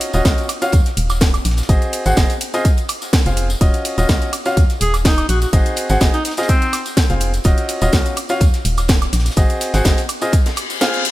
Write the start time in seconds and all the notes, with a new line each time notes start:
Already playing: C#4 F4 F#4 D#5
0.01 closed hi-hat, open hi-hat, ride, shaker
0.13 D#1 C#4 F4 F#4 D#5, closed hi-hat, tambourine, shaker
0.24 C#2 C#4 F4 F#4, kick, snare, closed hi-hat, ride, tambourine, shaker
0.38 closed hi-hat, tambourine, shaker
0.49 closed hi-hat, open hi-hat, ride, high woodblock, shaker
0.62 C#4 F4 F#4 F5, closed hi-hat, tambourine, shaker
0.72 D#2, kick, closed hi-hat, ride, tambourine, shaker
0.86 snare, closed hi-hat, tambourine, shaker
0.97 D#1, closed hi-hat, open hi-hat, ride, shaker
1.10 snare, closed hi-hat, tambourine, high woodblock, shaker
1.21 kick, snare, closed hi-hat, ride, shaker
1.34 snare, closed hi-hat, tambourine, high woodblock, shaker
1.45 A#1, snare, closed hi-hat, open hi-hat, ride, shaker
1.51 snare, closed hi-hat
1.57 snare, closed hi-hat, tambourine, shaker
1.63 snare, closed hi-hat
1.69 G#1 C4 F#4 G#4 D#5, kick, closed hi-hat, ride, tambourine, shaker
1.82 closed hi-hat, tambourine, shaker
1.93 closed hi-hat, open hi-hat, ride, shaker
2.06 G#1 C4 F#4 G#4 F#5, closed hi-hat, tambourine, shaker
2.17 F#1 C4 F#4 G#4 D#5, kick, snare, closed hi-hat, ride, tambourine, shaker
2.30 closed hi-hat, open hi-hat, tambourine, shaker
2.41 closed hi-hat, open hi-hat, ride, shaker
2.54 C4 F4 G#4 D#5, closed hi-hat, tambourine, shaker
2.65 kick, closed hi-hat, ride, tambourine, shaker
2.77 closed hi-hat, tambourine, shaker
2.89 closed hi-hat, open hi-hat, ride, high woodblock, shaker
3.02 snare, closed hi-hat, tambourine, shaker
3.13 kick, snare, closed hi-hat, ride, tambourine, shaker
3.26 F1 C4 F4 G#4 F5, snare, closed hi-hat, tambourine, shaker
3.37 closed hi-hat, open hi-hat, ride, shaker
3.50 snare, closed hi-hat, tambourine, shaker
3.61 D#1 C#4 F4 F#4 D#5, kick, closed hi-hat, ride, tambourine, shaker
3.74 closed hi-hat, tambourine, shaker
3.85 closed hi-hat, open hi-hat, ride, shaker
3.98 D#1 C#4 F4 F#4 D#5, closed hi-hat, tambourine, shaker
4.09 C#2 F4 F#4, kick, snare, closed hi-hat, ride, tambourine, shaker
4.22 closed hi-hat, tambourine, shaker
4.33 closed hi-hat, open hi-hat, ride, high woodblock, shaker
4.45 C#4 F4 F#4 F5, closed hi-hat, tambourine, shaker
4.57 D#2, kick, closed hi-hat, ride, tambourine, shaker
4.69 snare, closed hi-hat, tambourine, shaker
4.81 D#1 G#4, closed hi-hat, open hi-hat, ride, shaker
4.94 snare, closed hi-hat, tambourine, high woodblock, shaker
5.05 D#4, kick, snare, closed hi-hat, ride, tambourine, shaker
5.17 snare, closed hi-hat, tambourine, high woodblock, shaker
5.29 A#1 F#4, closed hi-hat, open hi-hat, ride, shaker
5.41 F#4, snare, closed hi-hat, tambourine, shaker
5.53 G#1 C4 F#4 G#4 D#5, kick, closed hi-hat, ride, tambourine, shaker
5.66 closed hi-hat, tambourine, shaker
5.76 closed hi-hat, open hi-hat, ride, shaker
5.89 G#1 C4 F#4 G#4 F#5, closed hi-hat, tambourine, shaker
6.01 F#1 C4 F#4 G#4 D#5, kick, snare, closed hi-hat, ride, tambourine, shaker
6.14 D#4, closed hi-hat, tambourine, shaker
6.25 D#4, snare, closed hi-hat, open hi-hat, ride, shaker
6.31 snare, closed hi-hat
6.37 C4 F4 G#4 D#5, snare, closed hi-hat, tambourine, shaker
6.43 snare, closed hi-hat
6.49 C4, kick, closed hi-hat, ride, tambourine, shaker
6.62 closed hi-hat, tambourine, shaker
6.73 snare, closed hi-hat, open hi-hat, ride, high woodblock, shaker
6.86 snare, closed hi-hat, tambourine, shaker
6.97 kick, snare, closed hi-hat, ride, tambourine, shaker
7.10 F1 C4 F4 G#4 F5, snare, closed hi-hat, tambourine, shaker
7.20 closed hi-hat, open hi-hat, ride, shaker
7.34 snare, closed hi-hat, tambourine, shaker
7.44 D#1 C#4 F4 F#4 D#5, kick, closed hi-hat, ride, tambourine, shaker
7.58 closed hi-hat, tambourine, shaker
7.69 closed hi-hat, open hi-hat, ride, shaker
7.81 D#1 C#4 F4 F#4 D#5, closed hi-hat, tambourine, shaker
7.92 C#2 F4 F#4, kick, snare, closed hi-hat, ride, tambourine, shaker
8.06 closed hi-hat, tambourine, shaker
8.17 closed hi-hat, open hi-hat, ride, high woodblock, shaker
8.29 C#4 F4 F#4 F5, closed hi-hat, tambourine, shaker
8.41 D#2, kick, closed hi-hat, ride, tambourine, shaker
8.53 snare, closed hi-hat, tambourine, shaker
8.65 D#1, closed hi-hat, open hi-hat, ride, shaker
8.77 snare, closed hi-hat, tambourine, high woodblock, shaker
8.88 kick, snare, closed hi-hat, ride, tambourine, shaker
9.02 snare, closed hi-hat, tambourine, high woodblock, shaker
9.13 A#1, snare, closed hi-hat, open hi-hat, ride, shaker
9.20 snare, closed hi-hat
9.26 snare, closed hi-hat, tambourine, shaker
9.31 snare, closed hi-hat
9.36 G#1 C4 F#4 G#4 D#5, kick, closed hi-hat, ride, tambourine, shaker
9.50 closed hi-hat, tambourine, shaker
9.61 snare, closed hi-hat, open hi-hat, ride, shaker
9.74 G#1 C4 F#4 G#4 F#5, snare, closed hi-hat, tambourine, shaker
9.85 F#1 C4 F#4 G#4 D#5, kick, snare, closed hi-hat, ride, tambourine, shaker
9.97 closed hi-hat, open hi-hat, tambourine, shaker
10.09 closed hi-hat, open hi-hat, ride, high woodblock, shaker
10.21 C4 F4 G#4 D#5, closed hi-hat, tambourine, shaker
10.33 kick, closed hi-hat, ride, tambourine, reverse cymbal, shaker
10.46 snare, closed hi-hat, tambourine, shaker
10.56 closed hi-hat, open hi-hat, ride, high woodblock, shaker
10.70 closed hi-hat, tambourine, shaker
10.81 C4 F4 G#4 F5, snare, closed hi-hat, ride, tambourine, shaker
10.94 snare, closed hi-hat, tambourine, shaker
11.05 closed hi-hat, open hi-hat, ride, shaker